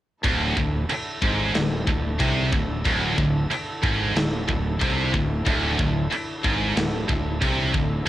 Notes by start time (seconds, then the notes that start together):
0.22 D1 D2 D3 E4 A4, kick, crash
0.56 D1 D2, kick
0.89 muted fingered electric bass stroke, muted distorted electric guitar stroke, crash
1.22 G#1 G#2, kick
1.55 D1 D2, snare, crash
1.87 D1 D2, kick
2.19 C2 C3, kick, crash
2.53 D1 D2, kick
2.85 D1 D2, kick, crash
3.18 D1 D2, kick
3.50 muted fingered electric bass stroke, muted distorted electric guitar stroke, crash
3.83 G#1 G#2, kick
4.16 D1 D2, snare, crash
4.48 D1 D2, kick
4.80 C2 C3, kick, crash
5.14 D1 D2, kick
5.46 D1 D2, kick, crash
5.79 D1 D2, kick
6.11 muted distorted electric guitar stroke, muted fingered electric bass stroke, crash
6.43 G#1 G#2, kick
6.76 D1 D2, snare, crash
7.09 D1 D2, kick
7.41 C2 C3, kick, crash
7.74 D1 D2, kick